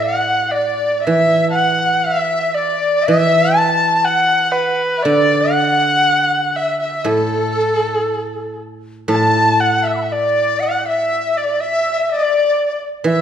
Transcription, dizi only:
0.08 0.58 F#5 medium
0.56 1.07 D5 medium
1.05 1.49 E5 medium
1.50 1.58 A5 soft
1.56 2.07 F#5 medium
2.06 2.56 E5 medium
2.55 3.08 D5 medium
3.06 3.56 E5 medium
3.55 4.09 A5 loud
4.08 4.80 F#5 medium
4.97 5.07 E5 medium
5.05 5.57 D5 medium
5.56 6.31 F#5 medium
6.56 6.79 E5 medium
6.81 7.07 E5 medium
7.06 8.58 A4 medium
9.09 9.62 A5 medium
9.60 9.85 F#5 medium
9.83 9.89 E5 medium
9.90 9.94 E6 soft
9.94 10.01 B5 soft
9.94 9.96 D6 soft
10.02 10.08 F#5 soft
10.02 10.04 A5 soft
10.09 10.61 D5 medium
10.09 10.13 E5 soft
10.60 10.87 F#5 medium
10.86 11.39 E5 medium
11.37 11.62 D5 medium
11.61 12.05 E5 medium
12.05 12.13 E5 medium
12.12 12.84 D5 medium
13.08 13.21 E5 medium

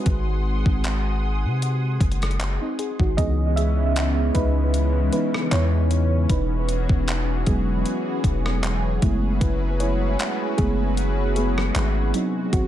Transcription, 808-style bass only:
0.06 0.64 G#1 loud
0.66 1.46 G#1 loud
1.45 1.98 C3 medium
2.01 2.59 F#1 loud
3.00 3.17 G#1 loud
3.18 4.31 C#2 loud
4.35 5.10 C#2 loud
5.52 6.27 E2 loud
6.30 6.87 E1 loud
6.90 7.44 E1 loud
7.47 7.84 E1 loud
8.24 8.99 E1 loud
9.03 9.40 F#1 loud
9.42 10.16 F#1 loud
10.59 11.71 F#1 loud
11.76 12.13 G#1 loud
12.53 12.68 G#1 loud

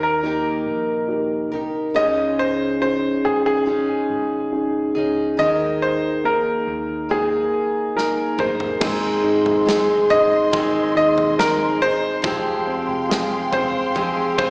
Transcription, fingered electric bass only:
0.00 0.63 D#2 medium
0.66 1.48 A#1 medium
1.52 1.92 C2 medium
1.96 3.20 C#2 medium
3.24 3.85 G#1 medium
4.10 4.92 G#1 medium
4.96 5.36 C#2 medium
5.39 6.63 D#2 medium
6.67 7.53 D#2 medium
7.53 8.35 A#1 medium
8.39 8.78 G1 medium
8.82 9.42 G#1 medium
9.46 10.06 G#1 medium
10.10 10.92 G#1 medium
10.96 12.21 D#2 medium
12.24 12.85 F1 loud
12.88 13.49 F1 medium
13.53 14.34 F1 medium
14.39 14.50 C2 medium

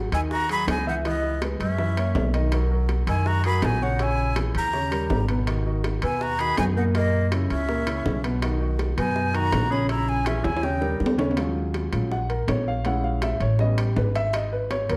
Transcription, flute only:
0.14 0.20 G#5 loud
0.32 0.49 A#5 loud
0.52 0.68 B5 loud
0.70 0.86 G#5 loud
0.89 0.95 F#5 medium
1.07 1.41 D#5 medium
1.62 2.31 E5 medium
3.08 3.29 G#5 medium
3.27 3.45 A#5 loud
3.46 3.66 B5 loud
3.64 3.84 G#5 loud
3.83 4.04 F#5 medium
4.03 4.38 G#5 loud
4.58 5.26 A#5 loud
6.04 6.24 G#5 medium
6.23 6.42 A#5 loud
6.41 6.58 B5 loud
6.58 6.64 G#5 loud
6.77 6.83 F#5 medium
6.96 7.30 D#5 medium
7.52 8.21 E5 medium
8.98 9.37 G#5 medium
9.35 9.73 A#5 loud
9.72 9.90 B5 medium
9.90 10.10 A#5 loud
10.09 10.29 G#5 medium
10.27 10.46 E5 medium
10.45 10.65 G#5 medium
10.64 11.01 G5 medium

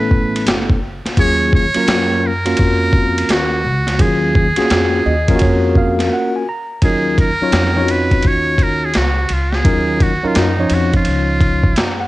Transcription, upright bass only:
0.00 0.44 A1 loud
0.47 1.02 F#1 medium
1.05 muted upright bass stroke medium
1.17 1.73 D#2 loud
1.76 muted upright bass stroke soft
1.87 2.55 F#2 medium
2.59 3.26 F2 loud
3.29 3.66 D#2 medium
3.65 3.98 C#2 medium
3.99 4.55 D#2 loud
4.59 muted upright bass stroke soft
4.71 5.04 F2 medium
5.06 5.39 D#2 medium
5.42 6.08 F2 loud
6.82 7.37 D#2 medium
7.41 muted upright bass stroke soft
7.53 8.25 F2 loud
8.25 8.91 D#2 medium
8.96 9.28 C#2 medium
9.30 9.63 C#2 medium
9.65 10.20 D#2 loud
10.24 muted upright bass stroke soft
10.36 10.69 F#2 medium
10.71 11.04 F2 medium
11.07 11.73 C#2 loud
11.77 12.08 F#2 medium

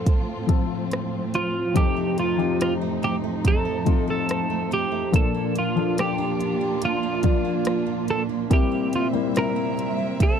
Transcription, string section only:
0.00 5.09 A2 medium
0.00 8.47 F3 medium
0.00 5.09 C4 medium
0.00 1.72 F4 medium
1.74 5.09 D#4 medium
5.12 10.40 A#2 medium
5.12 8.47 D4 medium
5.12 8.47 F4 medium
8.52 10.40 G3 medium
8.52 10.40 C4 medium
8.52 10.40 E5 medium

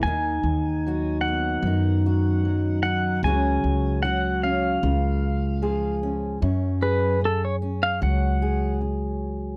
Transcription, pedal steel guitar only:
0.03 1.21 G#5 medium
1.21 2.82 F#5 medium
2.83 3.24 F#5 medium
3.24 4.02 G#5 medium
4.03 4.44 F#5 medium
4.43 5.99 F5 medium
6.83 7.20 B4 medium
7.25 7.44 A4 medium
7.45 7.55 C#5 medium
7.83 8.01 F5 medium
8.03 8.78 F#5 medium

